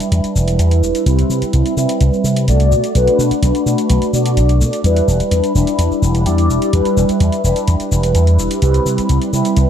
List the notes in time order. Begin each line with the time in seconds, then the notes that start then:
Already playing: G3 D4 E4 B4
0.00 closed hi-hat, shaker
0.12 E2, closed hi-hat, shaker
0.24 muted slap bass stroke, closed hi-hat, shaker
0.35 E1, shaker
0.48 closed hi-hat, shaker
0.59 E2, closed hi-hat, shaker
0.71 closed hi-hat, shaker
0.82 E1, shaker
0.95 closed hi-hat, shaker
1.05 C2 G3 C4 E4 B4, closed hi-hat, shaker
1.19 closed hi-hat, shaker
1.30 C3, shaker
1.42 muted slap bass stroke, closed hi-hat, shaker
1.53 C2, closed hi-hat, shaker
1.66 closed hi-hat, shaker
1.76 C3 G3 C4 E4 B4, shaker
1.89 closed hi-hat, shaker
2.01 C2, closed hi-hat, shaker
2.13 shaker
2.24 C3, shaker
2.36 closed hi-hat, shaker
2.47 C2 A3 D4 F#4 D5, closed hi-hat, shaker
2.60 closed hi-hat, shaker
2.72 B2, shaker
2.84 closed hi-hat, shaker
2.94 B1 A3 D4 F#4 B4, closed hi-hat, shaker
3.07 muted slap bass stroke, closed hi-hat, shaker
3.19 B2, shaker
3.31 muted slap bass stroke, closed hi-hat, shaker
3.42 B1, closed hi-hat, shaker
3.55 closed hi-hat, shaker
3.66 B2 A3 D4 F#4 B4, shaker
3.78 closed hi-hat, shaker
3.90 B1, closed hi-hat, shaker
4.02 closed hi-hat, shaker
4.13 B2 A3 D4 F#4 D5, shaker
4.26 closed hi-hat, shaker
4.37 B1, closed hi-hat, shaker
4.49 closed hi-hat, shaker
4.60 B2, shaker
4.73 closed hi-hat, shaker
4.83 E2 G3 D4 E4 B4, closed hi-hat, shaker
4.96 closed hi-hat, shaker
5.08 E1, shaker
5.20 muted slap bass stroke, closed hi-hat, shaker
5.31 E2, closed hi-hat, shaker
5.44 closed hi-hat, shaker
5.54 E1 G3 D4 E4 B4, shaker
5.67 closed hi-hat, shaker
5.79 E2, closed hi-hat, shaker
5.91 muted slap bass stroke, shaker
6.02 E1, shaker
6.15 closed hi-hat, shaker
6.25 E2 G3 D4 E4 D5, closed hi-hat, shaker
6.38 closed hi-hat, shaker
6.50 E1, shaker
6.62 closed hi-hat, shaker
6.72 E2 G3 D4 E4 B4, closed hi-hat, shaker
6.85 muted slap bass stroke, closed hi-hat, shaker
6.97 E1, shaker
7.09 muted slap bass stroke, closed hi-hat, shaker
7.20 E2, closed hi-hat, shaker
7.32 closed hi-hat, shaker
7.43 E1 G3 D4 E4 B4, shaker
7.56 closed hi-hat, shaker
7.68 E2, closed hi-hat, shaker
7.80 muted slap bass stroke, closed hi-hat, shaker
7.91 E1, shaker
8.03 closed hi-hat, shaker
8.15 E2, closed hi-hat, shaker
8.27 closed hi-hat, shaker
8.38 E1, shaker
8.51 closed hi-hat, shaker
8.62 C2 G3 C4 E4 B4, closed hi-hat, shaker
8.74 closed hi-hat, shaker
8.86 C3, shaker
8.98 muted slap bass stroke, closed hi-hat, shaker
9.09 C2, closed hi-hat, shaker
9.22 closed hi-hat, shaker
9.32 C3 G3 C4 E4 B4, shaker
9.45 closed hi-hat, shaker
9.56 C2, closed hi-hat, shaker